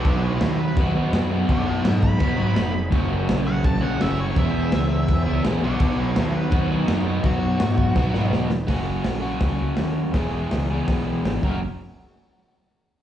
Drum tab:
CC |x-x-x-x-|x-x-x-x-|x-x-x-x-|x-x-x-x-|
HH |--------|--------|--------|--------|
SD |--o---o-|--o---o-|--o---o-|--o---o-|
BD |o---o---|o--oo---|o---o---|o---o---|

CC |x-x-x-x-|x-x-----|--------|-------x|
HH |--------|--------|o-o-o-o-|o-o-o-o-|
SD |--o---o-|--o-oooo|o-o-o-o-|o-o-o-o-|
BD |o---o---|o--oo---|o---o---|o---o--o|

CC |--------|
HH |--------|
SD |--------|
BD |--------|